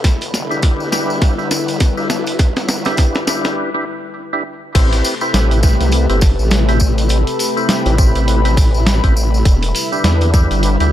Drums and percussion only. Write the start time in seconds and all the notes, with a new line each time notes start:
0.04 kick, snare, closed hi-hat, tambourine
0.21 closed hi-hat, tambourine
0.34 snare, tambourine
0.51 tambourine
0.62 kick, snare, closed hi-hat, tambourine
0.80 tambourine
0.92 snare, tambourine
1.10 tambourine
1.22 kick, snare, closed hi-hat, tambourine
1.39 tambourine
1.51 snare, tambourine
1.68 closed hi-hat, tambourine
1.80 kick, snare, closed hi-hat, tambourine
1.97 tambourine
2.10 snare, tambourine
2.27 closed hi-hat, tambourine
2.39 kick, snare, closed hi-hat, tambourine
2.56 snare, closed hi-hat, tambourine
2.68 snare, tambourine
2.85 snare, closed hi-hat, tambourine
2.97 kick, snare, closed hi-hat, tambourine
3.15 snare, tambourine
3.27 snare, tambourine
3.44 snare, closed hi-hat, tambourine
4.75 kick, closed hi-hat, crash, tambourine
4.93 closed hi-hat, tambourine
5.04 open hi-hat, tambourine
5.21 tambourine
5.34 snare, closed hi-hat, tambourine
5.51 closed hi-hat, tambourine
5.63 kick, snare, tambourine
5.69 snare
5.73 snare
5.80 snare, closed hi-hat, tambourine
5.83 snare
5.89 snare, closed hi-hat, tambourine
6.10 closed hi-hat, tambourine
6.21 kick, snare, open hi-hat, tambourine
6.39 tambourine
6.51 snare, closed hi-hat, tambourine
6.69 closed hi-hat, tambourine
6.80 kick, tambourine
6.98 closed hi-hat, tambourine
7.09 closed hi-hat, tambourine
7.27 closed hi-hat, tambourine
7.39 open hi-hat, tambourine
7.57 tambourine
7.69 snare, closed hi-hat, tambourine
7.86 closed hi-hat, tambourine
7.98 kick, tambourine
8.15 closed hi-hat, tambourine
8.28 closed hi-hat, tambourine
8.45 closed hi-hat, tambourine
8.57 kick, open hi-hat, tambourine
8.74 tambourine
8.87 snare, closed hi-hat, tambourine
9.04 kick, closed hi-hat, tambourine
9.17 tambourine
9.34 tambourine
9.45 kick, closed hi-hat, tambourine
9.63 closed hi-hat, tambourine
9.75 open hi-hat, tambourine
9.93 tambourine
10.04 snare, closed hi-hat, tambourine
10.21 closed hi-hat, tambourine
10.34 kick, snare, tambourine
10.51 closed hi-hat, tambourine
10.63 closed hi-hat, tambourine
10.80 closed hi-hat, tambourine